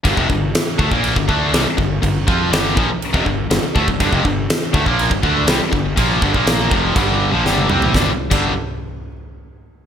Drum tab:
CC |x---x---x---x---|x---x---x---x---|x---x---x---x---|x---x---x-------|
SD |----o-------o---|----o-------o---|----o-------o---|----o-------o---|
T1 |----------------|----------------|----------------|-------------o--|
T2 |----------------|----------------|----------------|--------------o-|
FT |----------------|----------------|----------------|---------------o|
BD |ooo---oo-oo---o-|o-o---o--oo---oo|ooo---oo-oo---o-|o-oo--o-o-------|

CC |---x------------|
SD |o---------------|
T1 |----------------|
T2 |----------------|
FT |----------------|
BD |o--o------------|